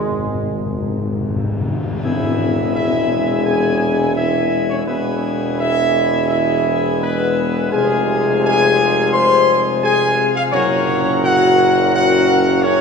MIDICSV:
0, 0, Header, 1, 8, 480
1, 0, Start_track
1, 0, Tempo, 729927
1, 1345, Time_signature, 4, 2, 24, 8
1, 1814, Tempo, 709220
1, 5654, Tempo, 701754
1, 8648, End_track
2, 0, Start_track
2, 0, Title_t, "Trumpet section"
2, 0, Program_c, 0, 61
2, 0, Note_on_c, 0, 68, 71
2, 833, Note_off_c, 0, 68, 0
2, 1338, Note_on_c, 0, 76, 88
2, 1784, Note_off_c, 0, 76, 0
2, 1809, Note_on_c, 0, 76, 114
2, 2261, Note_off_c, 0, 76, 0
2, 2287, Note_on_c, 0, 80, 106
2, 2738, Note_off_c, 0, 80, 0
2, 2762, Note_on_c, 0, 76, 105
2, 3096, Note_off_c, 0, 76, 0
2, 3126, Note_on_c, 0, 73, 94
2, 3179, Note_off_c, 0, 73, 0
2, 3238, Note_on_c, 0, 71, 86
2, 3702, Note_off_c, 0, 71, 0
2, 3733, Note_on_c, 0, 76, 126
2, 4181, Note_off_c, 0, 76, 0
2, 4207, Note_on_c, 0, 76, 110
2, 4657, Note_off_c, 0, 76, 0
2, 4690, Note_on_c, 0, 71, 107
2, 5152, Note_off_c, 0, 71, 0
2, 5177, Note_on_c, 0, 80, 96
2, 5628, Note_off_c, 0, 80, 0
2, 5658, Note_on_c, 0, 80, 127
2, 6107, Note_off_c, 0, 80, 0
2, 6127, Note_on_c, 0, 84, 125
2, 6496, Note_off_c, 0, 84, 0
2, 6612, Note_on_c, 0, 80, 127
2, 6943, Note_off_c, 0, 80, 0
2, 6965, Note_on_c, 0, 77, 127
2, 7019, Note_off_c, 0, 77, 0
2, 7081, Note_on_c, 0, 73, 113
2, 7546, Note_off_c, 0, 73, 0
2, 7576, Note_on_c, 0, 78, 127
2, 8029, Note_off_c, 0, 78, 0
2, 8055, Note_on_c, 0, 78, 127
2, 8503, Note_off_c, 0, 78, 0
2, 8526, Note_on_c, 0, 73, 126
2, 8648, Note_off_c, 0, 73, 0
2, 8648, End_track
3, 0, Start_track
3, 0, Title_t, "French horn section"
3, 0, Program_c, 1, 60
3, 0, Note_on_c, 1, 48, 78
3, 262, Note_off_c, 1, 48, 0
3, 374, Note_on_c, 1, 51, 69
3, 830, Note_off_c, 1, 51, 0
3, 851, Note_on_c, 1, 51, 68
3, 1082, Note_off_c, 1, 51, 0
3, 1095, Note_on_c, 1, 56, 63
3, 1324, Note_off_c, 1, 56, 0
3, 1338, Note_on_c, 1, 64, 94
3, 1784, Note_off_c, 1, 64, 0
3, 1813, Note_on_c, 1, 64, 92
3, 2263, Note_off_c, 1, 64, 0
3, 2288, Note_on_c, 1, 68, 103
3, 2738, Note_off_c, 1, 68, 0
3, 2766, Note_on_c, 1, 64, 97
3, 3098, Note_off_c, 1, 64, 0
3, 3124, Note_on_c, 1, 61, 82
3, 3178, Note_off_c, 1, 61, 0
3, 3241, Note_on_c, 1, 59, 88
3, 3703, Note_off_c, 1, 59, 0
3, 3733, Note_on_c, 1, 64, 98
3, 4202, Note_off_c, 1, 64, 0
3, 4210, Note_on_c, 1, 64, 104
3, 4573, Note_off_c, 1, 64, 0
3, 4688, Note_on_c, 1, 59, 91
3, 5151, Note_off_c, 1, 59, 0
3, 5172, Note_on_c, 1, 68, 114
3, 5626, Note_off_c, 1, 68, 0
3, 5655, Note_on_c, 1, 68, 122
3, 6105, Note_off_c, 1, 68, 0
3, 6134, Note_on_c, 1, 72, 117
3, 6583, Note_off_c, 1, 72, 0
3, 6617, Note_on_c, 1, 68, 127
3, 6946, Note_off_c, 1, 68, 0
3, 6970, Note_on_c, 1, 65, 107
3, 7087, Note_on_c, 1, 61, 116
3, 7088, Note_off_c, 1, 65, 0
3, 7549, Note_off_c, 1, 61, 0
3, 7579, Note_on_c, 1, 66, 118
3, 8030, Note_off_c, 1, 66, 0
3, 8059, Note_on_c, 1, 66, 125
3, 8505, Note_off_c, 1, 66, 0
3, 8537, Note_on_c, 1, 61, 122
3, 8648, Note_off_c, 1, 61, 0
3, 8648, End_track
4, 0, Start_track
4, 0, Title_t, "Pipe organ"
4, 0, Program_c, 2, 19
4, 1340, Note_on_c, 2, 68, 50
4, 1341, Note_on_c, 2, 47, 55
4, 1341, Note_on_c, 2, 64, 52
4, 1343, Note_on_c, 2, 59, 52
4, 3213, Note_off_c, 2, 47, 0
4, 3213, Note_off_c, 2, 64, 0
4, 3213, Note_off_c, 2, 68, 0
4, 3214, Note_off_c, 2, 59, 0
4, 3240, Note_on_c, 2, 47, 60
4, 3240, Note_on_c, 2, 64, 52
4, 3242, Note_on_c, 2, 59, 63
4, 3243, Note_on_c, 2, 68, 60
4, 5148, Note_off_c, 2, 47, 0
4, 5148, Note_off_c, 2, 64, 0
4, 5149, Note_off_c, 2, 59, 0
4, 5172, Note_on_c, 2, 65, 71
4, 5173, Note_on_c, 2, 48, 66
4, 5173, Note_on_c, 2, 56, 67
4, 7059, Note_off_c, 2, 68, 0
4, 7085, Note_off_c, 2, 48, 0
4, 7085, Note_off_c, 2, 56, 0
4, 7085, Note_off_c, 2, 65, 0
4, 7087, Note_on_c, 2, 66, 66
4, 7088, Note_on_c, 2, 49, 84
4, 7088, Note_on_c, 2, 54, 77
4, 7089, Note_on_c, 2, 70, 77
4, 8648, Note_off_c, 2, 49, 0
4, 8648, Note_off_c, 2, 54, 0
4, 8648, Note_off_c, 2, 66, 0
4, 8648, Note_off_c, 2, 70, 0
4, 8648, End_track
5, 0, Start_track
5, 0, Title_t, "Trombone section"
5, 0, Program_c, 3, 61
5, 0, Note_on_c, 3, 56, 94
5, 829, Note_off_c, 3, 56, 0
5, 1344, Note_on_c, 3, 52, 76
5, 1344, Note_on_c, 3, 56, 73
5, 3214, Note_off_c, 3, 56, 0
5, 3215, Note_off_c, 3, 52, 0
5, 3235, Note_on_c, 3, 56, 77
5, 3237, Note_on_c, 3, 52, 76
5, 5147, Note_off_c, 3, 52, 0
5, 5176, Note_on_c, 3, 48, 95
5, 6969, Note_off_c, 3, 48, 0
5, 6969, Note_off_c, 3, 56, 0
5, 7086, Note_on_c, 3, 54, 102
5, 7088, Note_on_c, 3, 46, 89
5, 8648, Note_off_c, 3, 46, 0
5, 8648, Note_off_c, 3, 54, 0
5, 8648, End_track
6, 0, Start_track
6, 0, Title_t, "Timpani"
6, 0, Program_c, 4, 47
6, 21, Note_on_c, 4, 44, 47
6, 66, Note_off_c, 4, 44, 0
6, 74, Note_on_c, 4, 44, 51
6, 118, Note_off_c, 4, 44, 0
6, 126, Note_on_c, 4, 44, 54
6, 169, Note_off_c, 4, 44, 0
6, 177, Note_on_c, 4, 44, 60
6, 221, Note_off_c, 4, 44, 0
6, 229, Note_on_c, 4, 44, 63
6, 271, Note_off_c, 4, 44, 0
6, 279, Note_on_c, 4, 44, 57
6, 320, Note_off_c, 4, 44, 0
6, 328, Note_on_c, 4, 44, 66
6, 377, Note_off_c, 4, 44, 0
6, 384, Note_on_c, 4, 44, 69
6, 424, Note_off_c, 4, 44, 0
6, 432, Note_on_c, 4, 44, 70
6, 477, Note_off_c, 4, 44, 0
6, 485, Note_on_c, 4, 44, 67
6, 530, Note_off_c, 4, 44, 0
6, 538, Note_on_c, 4, 44, 76
6, 579, Note_off_c, 4, 44, 0
6, 587, Note_on_c, 4, 44, 72
6, 629, Note_off_c, 4, 44, 0
6, 637, Note_on_c, 4, 44, 83
6, 679, Note_off_c, 4, 44, 0
6, 687, Note_on_c, 4, 44, 81
6, 733, Note_off_c, 4, 44, 0
6, 741, Note_on_c, 4, 44, 78
6, 786, Note_off_c, 4, 44, 0
6, 794, Note_on_c, 4, 44, 74
6, 836, Note_off_c, 4, 44, 0
6, 844, Note_on_c, 4, 44, 79
6, 890, Note_off_c, 4, 44, 0
6, 898, Note_on_c, 4, 44, 92
6, 940, Note_off_c, 4, 44, 0
6, 947, Note_on_c, 4, 44, 94
6, 996, Note_off_c, 4, 44, 0
6, 1003, Note_on_c, 4, 44, 86
6, 1049, Note_off_c, 4, 44, 0
6, 1057, Note_on_c, 4, 44, 97
6, 1096, Note_off_c, 4, 44, 0
6, 1104, Note_on_c, 4, 44, 98
6, 1151, Note_off_c, 4, 44, 0
6, 1159, Note_on_c, 4, 44, 88
6, 1203, Note_off_c, 4, 44, 0
6, 1211, Note_on_c, 4, 44, 102
6, 1258, Note_off_c, 4, 44, 0
6, 1265, Note_on_c, 4, 44, 101
6, 1311, Note_off_c, 4, 44, 0
6, 8648, End_track
7, 0, Start_track
7, 0, Title_t, "Tuba"
7, 0, Program_c, 5, 58
7, 0, Note_on_c, 5, 32, 68
7, 1098, Note_off_c, 5, 32, 0
7, 1343, Note_on_c, 5, 28, 86
7, 3214, Note_off_c, 5, 28, 0
7, 3238, Note_on_c, 5, 28, 86
7, 5177, Note_on_c, 5, 29, 83
7, 5187, Note_off_c, 5, 28, 0
7, 6897, Note_off_c, 5, 29, 0
7, 7085, Note_on_c, 5, 30, 105
7, 8648, Note_off_c, 5, 30, 0
7, 8648, End_track
8, 0, Start_track
8, 0, Title_t, "Tam-tam"
8, 1347, Note_on_c, 9, 52, 63
8, 1413, Note_off_c, 9, 52, 0
8, 8648, End_track
0, 0, End_of_file